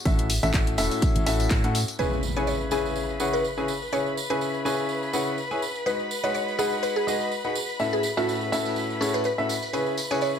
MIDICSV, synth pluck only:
0, 0, Header, 1, 2, 480
1, 0, Start_track
1, 0, Key_signature, 4, "minor"
1, 0, Tempo, 483871
1, 55, Time_signature, 4, 2, 24, 8
1, 10310, End_track
2, 0, Start_track
2, 0, Title_t, "Synth pluck"
2, 0, Program_c, 0, 84
2, 1974, Note_on_c, 0, 71, 88
2, 2178, Note_off_c, 0, 71, 0
2, 2346, Note_on_c, 0, 73, 85
2, 2415, Note_off_c, 0, 73, 0
2, 2454, Note_on_c, 0, 73, 69
2, 2539, Note_off_c, 0, 73, 0
2, 2694, Note_on_c, 0, 68, 85
2, 2898, Note_off_c, 0, 68, 0
2, 3306, Note_on_c, 0, 71, 84
2, 3502, Note_off_c, 0, 71, 0
2, 3894, Note_on_c, 0, 73, 88
2, 4240, Note_off_c, 0, 73, 0
2, 4266, Note_on_c, 0, 71, 86
2, 4614, Note_off_c, 0, 71, 0
2, 5814, Note_on_c, 0, 71, 85
2, 6018, Note_off_c, 0, 71, 0
2, 6186, Note_on_c, 0, 73, 85
2, 6255, Note_off_c, 0, 73, 0
2, 6294, Note_on_c, 0, 73, 72
2, 6379, Note_off_c, 0, 73, 0
2, 6533, Note_on_c, 0, 68, 84
2, 6738, Note_off_c, 0, 68, 0
2, 6773, Note_on_c, 0, 71, 88
2, 6880, Note_off_c, 0, 71, 0
2, 6906, Note_on_c, 0, 68, 86
2, 7102, Note_off_c, 0, 68, 0
2, 7866, Note_on_c, 0, 68, 85
2, 8080, Note_off_c, 0, 68, 0
2, 8107, Note_on_c, 0, 66, 86
2, 8303, Note_off_c, 0, 66, 0
2, 8934, Note_on_c, 0, 68, 85
2, 9040, Note_off_c, 0, 68, 0
2, 9067, Note_on_c, 0, 71, 85
2, 9136, Note_off_c, 0, 71, 0
2, 9175, Note_on_c, 0, 71, 73
2, 9260, Note_off_c, 0, 71, 0
2, 9655, Note_on_c, 0, 71, 88
2, 9858, Note_off_c, 0, 71, 0
2, 10027, Note_on_c, 0, 73, 86
2, 10096, Note_off_c, 0, 73, 0
2, 10135, Note_on_c, 0, 73, 71
2, 10219, Note_off_c, 0, 73, 0
2, 10310, End_track
0, 0, End_of_file